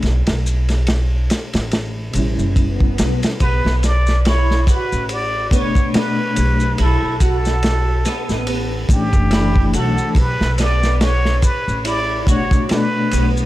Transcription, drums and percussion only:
0.02 snare soft
0.02 ride medium
0.02 maracas soft
0.27 snare loud
0.27 ride medium
0.46 maracas medium
0.69 snare soft
0.69 ride medium
0.69 maracas soft
0.87 snare loud
0.87 ride medium
0.87 maracas soft
1.30 snare medium
1.30 ride medium
1.30 maracas medium
1.53 snare medium
1.53 ride medium
1.53 maracas soft
1.71 snare loud
1.71 ride medium
1.71 maracas soft
2.13 ride medium
2.13 maracas medium
2.39 maracas soft
2.56 kick medium
2.56 ride medium
2.56 maracas soft
2.80 kick medium
2.98 snare loud
2.98 ride medium
2.98 maracas medium
3.23 snare loud
3.23 ride medium
3.23 maracas soft
3.40 kick loud
3.40 ride medium
3.40 maracas soft
3.66 snare medium
3.83 snare soft
3.83 ride medium
3.83 maracas medium
4.07 snare soft
4.07 maracas medium
4.25 snare loud
4.25 ride medium
4.25 maracas soft
4.51 snare soft
4.67 kick medium
4.67 ride medium
4.67 maracas medium
4.92 maracas medium
5.09 ride medium
5.09 maracas soft
5.51 kick medium
5.51 ride medium
5.51 maracas medium
5.75 kick medium
5.75 maracas soft
5.94 snare loud
5.94 ride medium
5.94 maracas soft
6.36 ride medium
6.36 maracas medium
6.60 maracas soft
6.78 ride medium
6.78 maracas soft
7.20 kick medium
7.20 ride medium
7.20 maracas loud
7.45 snare soft
7.45 maracas medium
7.63 snare loud
7.63 ride medium
7.63 maracas soft
8.05 snare soft
8.05 ride medium
8.05 maracas medium
8.29 snare soft
8.29 maracas soft
8.47 ride medium
8.47 maracas soft
8.89 kick medium
8.89 ride medium
8.89 maracas medium
9.13 kick medium
9.13 maracas soft
9.31 snare loud
9.31 ride medium
9.31 maracas soft
9.56 kick medium
9.73 ride medium
9.73 maracas medium
9.98 maracas medium
10.15 kick loud
10.15 ride medium
10.15 maracas soft
10.41 snare medium
10.58 snare medium
10.58 ride medium
10.58 maracas medium
10.83 snare soft
10.83 maracas medium
11.01 snare loud
11.01 ride medium
11.01 maracas soft
11.25 snare soft
11.42 kick medium
11.42 ride medium
11.42 maracas medium
11.69 maracas soft
11.85 ride medium
11.85 maracas soft
12.27 kick medium
12.27 ride medium
12.27 maracas medium
12.51 kick medium
12.51 maracas medium
12.69 snare loud
12.69 ride medium
12.69 maracas soft
13.11 ride medium
13.11 maracas medium
13.37 maracas medium

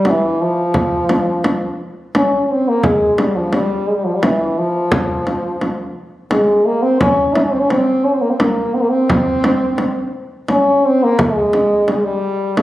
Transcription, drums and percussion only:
0.05 frame drum medium
0.74 frame drum medium
1.09 frame drum medium
1.44 frame drum medium
2.15 frame drum medium
2.83 frame drum medium
3.18 frame drum medium
3.53 frame drum medium
4.23 frame drum medium
4.92 frame drum medium
5.27 frame drum medium
5.61 frame drum medium
6.31 frame drum medium
7.01 frame drum medium
7.35 frame drum medium
7.70 frame drum medium
8.40 frame drum medium
9.10 frame drum medium
9.44 frame drum medium
9.78 frame drum medium
10.48 frame drum medium
11.19 frame drum medium
11.53 frame drum medium
11.88 frame drum medium
12.57 frame drum medium

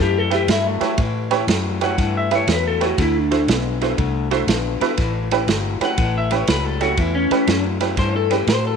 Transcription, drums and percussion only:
0.31 snare soft
0.31 ride medium
0.48 snare loud
0.48 ride medium
0.81 snare soft
0.81 ride medium
0.98 kick loud
0.98 ride medium
1.31 snare soft
1.31 ride medium
1.48 snare loud
1.48 ride medium
1.81 snare soft
1.81 ride medium
1.98 kick loud
1.98 snare soft
1.98 ride medium
2.31 snare soft
2.31 ride medium
2.48 snare medium
2.48 ride medium
2.81 snare soft
2.81 ride medium
2.98 kick loud
2.98 snare soft
2.98 ride medium
3.31 snare soft
3.31 ride medium
3.48 snare loud
3.48 ride medium
3.81 snare soft
3.81 ride medium
3.98 kick loud
3.98 ride medium
4.31 snare soft
4.31 ride medium
4.48 snare loud
4.48 ride medium
4.81 snare soft
4.81 ride medium
4.97 kick loud
4.97 snare soft
4.97 ride medium
5.31 snare soft
5.31 ride medium
5.48 snare loud
5.48 ride medium
5.81 snare soft
5.81 ride medium
5.98 kick loud
5.98 ride medium
6.31 snare soft
6.31 ride medium
6.47 snare loud
6.47 ride medium
6.81 snare soft
6.81 ride medium
6.97 kick loud
6.97 ride medium
7.31 snare soft
7.31 ride medium
7.47 snare loud
7.47 ride medium
7.80 snare soft
7.80 ride medium
7.97 kick loud
7.97 snare soft
7.97 ride medium
8.31 snare soft
8.31 ride medium
8.47 snare medium
8.47 ride medium

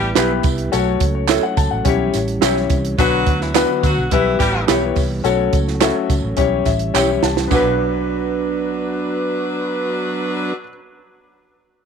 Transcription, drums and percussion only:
0.16 snare loud
0.16 clap loud
0.16 closed hi-hat loud
0.16 tambourine loud
0.43 kick loud
0.43 closed hi-hat medium
0.43 tambourine medium
0.58 closed hi-hat soft
0.73 closed hi-hat medium
0.73 tambourine medium
1.00 kick medium
1.00 closed hi-hat medium
1.00 tambourine soft
1.28 snare loud
1.28 clap loud
1.28 closed hi-hat medium
1.28 tambourine medium
1.57 kick loud
1.57 closed hi-hat medium
1.57 tambourine medium
1.85 kick medium
1.85 closed hi-hat medium
1.85 tambourine soft
2.13 snare soft
2.13 closed hi-hat medium
2.13 tambourine medium
2.28 closed hi-hat soft
2.42 snare loud
2.42 clap medium
2.42 closed hi-hat loud
2.42 tambourine loud
2.57 snare soft
2.70 kick loud
2.70 closed hi-hat medium
2.70 tambourine soft
2.85 closed hi-hat medium
2.99 kick loud
2.99 closed hi-hat medium
2.99 tambourine medium
3.26 kick medium
3.26 closed hi-hat medium
3.41 snare soft
3.55 snare loud
3.55 clap loud
3.55 closed hi-hat medium
3.55 tambourine medium
3.83 kick medium
3.83 closed hi-hat medium
3.83 tambourine medium
4.11 kick medium
4.11 closed hi-hat medium
4.40 kick medium
4.40 snare soft
4.40 closed hi-hat medium
4.40 tambourine soft
4.68 snare loud
4.68 clap medium
4.68 closed hi-hat medium
4.68 tambourine medium
4.96 kick loud
4.96 open hi-hat medium
4.96 tambourine soft
5.25 closed hi-hat medium
5.25 tambourine medium
5.53 kick medium
5.53 closed hi-hat medium
5.53 tambourine soft
5.68 snare soft
5.81 snare loud
5.81 clap loud
5.81 closed hi-hat medium
5.81 tambourine medium
6.10 kick medium
6.10 closed hi-hat medium
6.10 tambourine medium
6.37 kick medium
6.37 closed hi-hat medium
6.37 tambourine soft
6.66 kick medium
6.66 snare soft
6.66 closed hi-hat medium
6.66 tambourine soft
6.79 closed hi-hat soft
6.94 snare medium
6.94 clap medium
6.94 tambourine medium
7.23 snare medium
7.23 tambourine soft
7.37 snare medium
7.51 kick loud
7.51 floor tom loud
7.51 tambourine medium

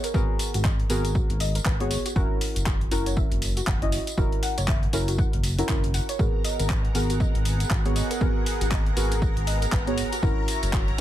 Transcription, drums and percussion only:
0.04 closed hi-hat medium
0.04 tambourine soft
0.14 kick loud
0.14 tambourine soft
0.39 open hi-hat loud
0.39 tambourine medium
0.54 closed hi-hat medium
0.54 tambourine soft
0.65 kick loud
0.65 clap loud
0.80 closed hi-hat soft
0.90 open hi-hat medium
0.90 tambourine medium
1.05 closed hi-hat medium
1.05 tambourine soft
1.15 kick loud
1.15 tambourine soft
1.30 closed hi-hat medium
1.40 open hi-hat loud
1.40 tambourine medium
1.55 closed hi-hat medium
1.55 tambourine soft
1.65 kick loud
1.65 clap loud
1.65 tambourine soft
1.80 closed hi-hat medium
1.91 open hi-hat medium
1.91 tambourine medium
2.06 closed hi-hat medium
2.06 tambourine soft
2.16 kick loud
2.16 tambourine soft
2.41 open hi-hat loud
2.41 tambourine medium
2.56 closed hi-hat medium
2.56 tambourine soft
2.66 kick loud
2.66 clap loud
2.81 closed hi-hat soft
2.91 open hi-hat medium
2.91 tambourine medium
3.06 closed hi-hat medium
3.06 tambourine soft
3.17 kick loud
3.17 tambourine soft
3.32 closed hi-hat medium
3.42 open hi-hat loud
3.42 tambourine medium
3.57 closed hi-hat medium
3.57 tambourine soft
3.67 kick loud
3.67 clap loud
3.67 tambourine soft
3.82 closed hi-hat medium
3.92 open hi-hat medium
3.92 tambourine medium
4.07 closed hi-hat medium
4.07 tambourine soft
4.18 kick loud
4.18 tambourine soft
4.33 closed hi-hat soft
4.43 open hi-hat loud
4.43 tambourine medium
4.58 closed hi-hat medium
4.58 tambourine soft
4.68 kick loud
4.68 clap loud
4.83 closed hi-hat soft
4.93 open hi-hat medium
4.93 tambourine medium
5.08 closed hi-hat medium
5.08 tambourine soft
5.18 kick loud
5.18 tambourine soft
5.33 closed hi-hat medium
5.44 open hi-hat loud
5.44 tambourine medium
5.59 closed hi-hat medium
5.59 tambourine soft
5.69 kick loud
5.69 clap loud
5.69 tambourine soft
5.84 closed hi-hat medium
5.94 open hi-hat medium
5.94 tambourine medium
6.09 closed hi-hat medium
6.09 tambourine soft
6.19 kick loud
6.19 tambourine soft
6.45 open hi-hat loud
6.45 tambourine medium
6.60 closed hi-hat medium
6.60 tambourine soft
6.70 kick loud
6.70 clap loud
6.85 closed hi-hat soft
6.95 open hi-hat loud
6.95 tambourine medium
7.10 closed hi-hat medium
7.10 tambourine soft
7.20 kick loud
7.20 tambourine soft
7.35 closed hi-hat medium
7.45 open hi-hat loud
7.45 tambourine medium
7.60 closed hi-hat medium
7.60 tambourine soft
7.71 kick loud
7.71 clap loud
7.86 closed hi-hat medium
7.96 open hi-hat medium
7.96 tambourine medium
8.11 closed hi-hat medium
8.11 tambourine soft
8.21 kick loud
8.21 tambourine soft
8.46 open hi-hat loud
8.46 tambourine medium
8.61 closed hi-hat medium
8.61 tambourine soft
8.71 kick loud
8.71 clap loud
8.71 tambourine soft
8.86 closed hi-hat soft
8.97 open hi-hat loud
8.97 tambourine medium
9.12 closed hi-hat medium
9.12 tambourine soft
9.22 kick loud
9.22 tambourine soft
9.37 closed hi-hat medium
9.47 open hi-hat loud
9.47 tambourine medium
9.62 closed hi-hat medium
9.62 tambourine soft
9.72 kick loud
9.72 clap loud
9.87 closed hi-hat medium
9.98 open hi-hat loud
9.98 tambourine medium
10.13 closed hi-hat medium
10.13 tambourine soft
10.23 kick loud
10.23 tambourine soft
10.48 open hi-hat loud
10.48 tambourine medium
10.63 closed hi-hat medium
10.63 tambourine soft
10.73 kick loud
10.73 clap loud
10.73 tambourine soft
10.88 closed hi-hat soft

